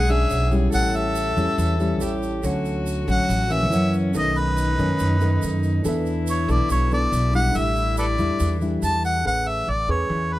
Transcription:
Already playing: upright bass B1, nylon-string guitar G#3, tine electric piano G#4 C#5 F#5, cello G#4, harmonica F#5
0.09 nylon-string guitar C#4 D4 G#4, harmonica E5, shaker
0.30 upright bass B1, tine electric piano G#4 C#5 F#5, shaker
0.51 nylon-string guitar G3 C#4 E4, shaker
0.70 upright bass A1, nylon-string guitar A2, tine electric piano E4 A4, cello A4, shaker
0.74 tine electric piano C#5 G5, harmonica F#5
0.94 harmonica E5, shaker
1.15 shaker
1.37 upright bass E2, nylon-string guitar G3 C#4 E4, shaker
1.58 upright bass E2, nylon-string guitar E3, shaker
1.80 nylon-string guitar G3 C#4 E4, shaker
1.99 upright bass A1, tine electric piano E4 A4 C#5 G5, cello G4, shaker
2.23 shaker
2.43 upright bass D2, nylon-string guitar D3 F#3 A3 C#4, cello F#4, tine electric piano A4 C#5, shaker
2.47 tine electric piano F#5
2.65 shaker
2.87 shaker
3.07 upright bass A1, nylon-string guitar F#3 A3 C#4, harmonica F#5, shaker
3.29 upright bass A1, nylon-string guitar A2, shaker
3.50 nylon-string guitar E3 A#3 C#4, harmonica E5, shaker
3.71 upright bass F#2, cello C#4, tine electric piano E4 A#4 C#5 F#5, shaker
3.93 shaker
4.12 upright bass B1, nylon-string guitar B2 D#3 A3 C#4, tine electric piano C#4 A4, cello D#4, shaker
4.16 tine electric piano B4 D#5, harmonica D#5
4.36 harmonica B4, shaker
4.57 shaker
4.78 upright bass F#2, nylon-string guitar D#3 A3 C#4, shaker
4.99 nylon-string guitar F#2, upright bass F#2, shaker
5.21 nylon-string guitar D#3 A3 C#4, tine electric piano C#4 A4 B4 D#5, shaker
5.42 upright bass F#2, shaker
5.63 shaker
5.82 upright bass E2, nylon-string guitar E3 B3 D4 A4, tine electric piano D4 A4, cello E4, shaker
5.86 tine electric piano B4 E5
6.06 shaker
6.27 harmonica C#5, shaker
6.48 upright bass B1, nylon-string guitar B3 D4 A4, harmonica D5, shaker
6.69 upright bass B1, nylon-string guitar B2, harmonica C#5, shaker
6.91 nylon-string guitar B3 D4 A4, harmonica D5, shaker
7.12 upright bass B1, shaker
7.33 nylon-string guitar G3 D4 E4, harmonica F#5, shaker
7.51 upright bass A1, tine electric piano D4 G4 A4, cello E4, shaker
7.56 nylon-string guitar A2, harmonica E5, tine electric piano E5
7.76 shaker
7.97 harmonica A4 B4 D5, shaker
8.18 upright bass E2, nylon-string guitar G3 D4 E4, shaker
8.40 upright bass E2, nylon-string guitar E3, shaker
8.61 nylon-string guitar G3 D4 E4, shaker
8.82 upright bass E2, harmonica A5, shaker
9.04 harmonica F#5, shaker
9.25 upright bass A1, nylon-string guitar A3 C#4 G#4 B4, harmonica F#5
9.48 harmonica E5
9.67 upright bass A1, harmonica D5
9.88 upright bass E2, nylon-string guitar C#4 G#4 B4, harmonica C#5
10.10 upright bass E2, nylon-string guitar E3
10.33 harmonica B4

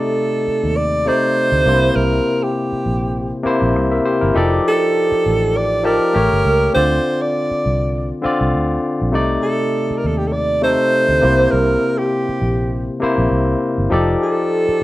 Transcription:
Already playing: tine electric piano C3 A3 D#4 D5, alto saxophone A4
0.48 muted fingered electric bass stroke
0.64 fingered electric bass D#2
0.77 alto saxophone D5
1.05 tine electric piano C3 A3 D#4 D5, alto saxophone C5
1.52 fingered electric bass D2
1.66 fingered electric bass C2, tine electric piano C3 A#3 D4 C5
1.74 tine electric piano E4
1.96 fingered electric bass C2, alto saxophone A#4
2.43 alto saxophone G4
2.72 muted fingered electric bass stroke
2.86 fingered electric bass A#1
3.43 tine electric piano C3 A#3 E4 C5, muted fingered electric bass stroke
3.62 fingered electric bass A#1
3.76 fingered electric bass C2
3.92 tine electric piano A#4 E5
4.05 tine electric piano G4 C5
4.21 fingered electric bass G1, tine electric piano E4 A#4
4.34 fingered electric bass F1, tine electric piano F3 D#4 G4 A4 D5
4.68 alto saxophone A4
5.12 muted fingered electric bass stroke
5.26 fingered electric bass A1
5.57 alto saxophone D5
5.83 tine electric piano F3 D#4 G4 D5 A5, alto saxophone A#4
6.13 fingered electric bass A1, tine electric piano A3 G4 A#4 C#5
6.32 fingered electric bass G1
6.45 fingered electric bass C#2
6.73 fingered electric bass D2, tine electric piano D3 C4 F4 D5, alto saxophone C5
7.22 alto saxophone D5
7.51 muted fingered electric bass stroke
7.66 fingered electric bass C2
8.22 tine electric piano D3 C4 F4 D5, muted fingered electric bass stroke
8.41 fingered electric bass C2
8.54 fingered electric bass D2
9.02 fingered electric bass A#1
9.12 fingered electric bass C2, tine electric piano C3 A3 D#4 D5
9.43 alto saxophone A4
9.91 muted fingered electric bass stroke
9.98 alto saxophone A#4
10.04 fingered electric bass D#2, alto saxophone A4
10.18 alto saxophone G4
10.27 alto saxophone A4
10.33 alto saxophone D5
10.62 tine electric piano C3 A3 D#4 A4, alto saxophone C5
11.09 fingered electric bass D2
11.21 fingered electric bass C2, tine electric piano C3 A#3 E4 C5
11.51 fingered electric bass C2, alto saxophone A#4
11.98 alto saxophone G4
12.29 muted fingered electric bass stroke
12.42 fingered electric bass A#1
13.00 tine electric piano C3 A#3 E4 C5, muted fingered electric bass stroke
13.18 fingered electric bass A#1
13.31 fingered electric bass C2
13.78 fingered electric bass G1
13.90 fingered electric bass F1, tine electric piano F3 D#4 G4 A4 D5
14.22 alto saxophone A4
14.69 muted fingered electric bass stroke

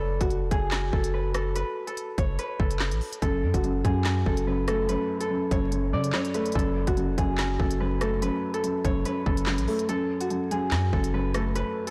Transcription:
Already playing: 808-style bass F#1, harp A4 B4 C#5
0.21 808-style bass F#1, harp F#4, kick, closed hi-hat
0.30 closed hi-hat
0.41 808-style bass F1
0.51 808-style bass F#1, harp G#4, kick, closed hi-hat
0.71 snare, clap, closed hi-hat
0.93 808-style bass F#1, harp A4, kick
1.04 closed hi-hat
1.14 harp B4
1.34 harp A4, cross-stick, closed hi-hat
1.56 harp B4, closed hi-hat
1.87 harp A4, closed hi-hat
1.97 closed hi-hat
2.18 808-style bass F#1, harp C#5, kick, closed hi-hat
2.39 harp B4, closed hi-hat
2.60 808-style bass F#1, harp A4, kick
2.71 closed hi-hat
2.80 snare, clap
2.91 808-style bass A1, closed hi-hat
3.01 open hi-hat
3.13 closed hi-hat
3.22 808-style bass F#1, grand piano F#2, harp A4, kick, closed hi-hat
3.43 808-style bass F#2
3.54 808-style bass F#1, harp F#4, kick, closed hi-hat
3.64 grand piano F#2, closed hi-hat
3.85 grand piano F#2, 808-style bass F#2, harp G#4, kick, closed hi-hat
4.05 grand piano F#2, snare, clap, closed hi-hat
4.26 808-style bass F#1, grand piano F#2, harp A4, kick
4.37 closed hi-hat
4.47 grand piano F#2, harp B4
4.68 grand piano A3, harp A4, cross-stick, closed hi-hat
4.89 grand piano F#2, harp B4, closed hi-hat
5.20 harp A4, closed hi-hat
5.30 grand piano F#2
5.51 808-style bass F#1, grand piano F#2, harp C#5, kick, closed hi-hat
5.72 grand piano F#2, closed hi-hat
5.93 grand piano F#2, 808-style bass C#3, harp D5
6.04 closed hi-hat
6.13 grand piano F#2, harp C#5, snare, clap
6.25 closed hi-hat
6.34 grand piano A3, harp B4, closed hi-hat
6.46 closed hi-hat
6.52 808-style bass F#1, grand piano F#2, harp A4, kick, closed hi-hat
6.59 closed hi-hat
6.87 808-style bass F#1, harp F#4, kick, closed hi-hat
6.97 grand piano F#2, closed hi-hat
7.08 808-style bass F1
7.18 808-style bass F#1, grand piano F#2, harp G#4, kick, closed hi-hat
7.38 grand piano F#2, snare, clap, closed hi-hat
7.60 808-style bass F#1, grand piano F#2, harp A4, kick
7.71 closed hi-hat
7.80 grand piano F#2, harp B4
8.01 grand piano A3, harp A4, cross-stick, closed hi-hat
8.22 grand piano F#2, harp B4, closed hi-hat
8.54 harp A4, closed hi-hat
8.64 grand piano F#2, closed hi-hat
8.85 808-style bass F#1, grand piano F#2, harp C#5, kick, closed hi-hat
9.05 grand piano F#2, harp B4, closed hi-hat
9.26 808-style bass F#1, grand piano F#2, harp A4, kick
9.37 closed hi-hat
9.46 grand piano F#2, snare, clap
9.58 808-style bass A1, closed hi-hat
9.68 grand piano A3, open hi-hat
9.79 closed hi-hat
9.89 grand piano F#2, harp A4, closed hi-hat
10.21 harp F#4, closed hi-hat
10.30 grand piano F#2, closed hi-hat
10.51 grand piano F#2, harp G#4, closed hi-hat
10.71 808-style bass F#2, grand piano F#2, snare, clap, closed hi-hat
10.93 808-style bass F#1, grand piano F#2, harp A4, kick
11.04 closed hi-hat
11.14 grand piano F#2, harp B4
11.34 grand piano A3, harp A4, cross-stick, closed hi-hat
11.55 harp B4, closed hi-hat
11.87 harp A4, closed hi-hat

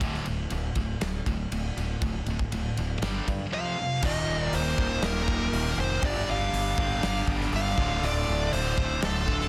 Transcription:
0.00 fingered electric bass D1, overdriven electric guitar D2 A2 D3, kick, ride
0.14 snare
0.25 fingered electric bass D1, overdriven electric guitar D2 A2, ride
0.50 fingered electric bass D1, overdriven electric guitar D2 A2, ride
0.75 fingered electric bass D1, overdriven electric guitar D2 A2, kick, ride
1.00 fingered electric bass D1, overdriven electric guitar D2 A2, snare, ride
1.26 fingered electric bass D1, overdriven electric guitar D2 A2, kick, ride
1.52 fingered electric bass D1, overdriven electric guitar D2 A2, ride
1.77 fingered electric bass D1, overdriven electric guitar D2 A2, ride
2.01 fingered electric bass D1, overdriven electric guitar D2 A2, kick, ride
2.26 fingered electric bass D1, overdriven electric guitar D2 A2, ride
2.39 kick
2.52 fingered electric bass D1, overdriven electric guitar D2 A2, ride
2.77 fingered electric bass D1, overdriven electric guitar D2 A2, ride
3.02 fingered electric bass G1, overdriven electric guitar G2 D3 G3, snare, ride
3.27 overdriven electric guitar G2 D3, fingered electric bass G2, kick, ride
3.52 overdriven electric guitar F2 C3 F3, lead electric guitar F5
3.78 overdriven electric guitar F2 C3
4.02 fingered electric bass D#1, overdriven electric guitar D#2 A#2 D#3, distorted electric guitar D#2 A#2 D#3 G3, tonewheel organ D#4 A#4 F5, lead electric guitar D#5, kick, crash
4.06 distorted electric guitar G4
4.27 fingered electric bass D#1
4.42 lead electric guitar D5
4.53 fingered electric bass D#1, lead electric guitar C5, open hi-hat
4.77 fingered electric bass D#1, overdriven electric guitar D#2 A#2 D#3, kick
5.02 fingered electric bass D#1, distorted electric guitar D#2 A#2 D#3 G3 G4, lead electric guitar A#4, snare, open hi-hat
5.28 kick
5.52 fingered electric bass D#1, overdriven electric guitar D#2 A#2 D#3, open hi-hat
5.77 fingered electric bass F1, lead electric guitar C5
6.01 fingered electric bass G1, overdriven electric guitar G2 D3 G3, distorted electric guitar G2 D3 G3 A#3 D4 G4, tonewheel organ G3 D4 A4, lead electric guitar D5, kick, open hi-hat
6.29 fingered electric bass G1, lead electric guitar F5
6.53 fingered electric bass G1, open hi-hat
6.77 fingered electric bass G1, overdriven electric guitar G2 D3 G3, kick
7.02 fingered electric bass G1, distorted electric guitar G2 D3 G3 A#3 D4 G4, snare, open hi-hat
7.27 fingered electric bass G1, kick
7.41 snare
7.52 fingered electric bass G1, overdriven electric guitar G2 D3 G3, lead electric guitar F5, open hi-hat
7.76 fingered electric bass D1, overdriven electric guitar D2 A2 D3, distorted electric guitar D2 A2 D3 A3 F4, tonewheel organ D4 F5, kick
8.03 fingered electric bass D1, lead electric guitar D5, open hi-hat
8.28 fingered electric bass D1
8.52 fingered electric bass D1, overdriven electric guitar D2 A2 D3, lead electric guitar C5, open hi-hat
8.77 fingered electric bass D1, distorted electric guitar D2 A2 D3 A3 F4, kick
9.02 fingered electric bass D1, lead electric guitar A4, snare, open hi-hat
9.27 overdriven electric guitar D2 A2 D3, kick
9.41 snare

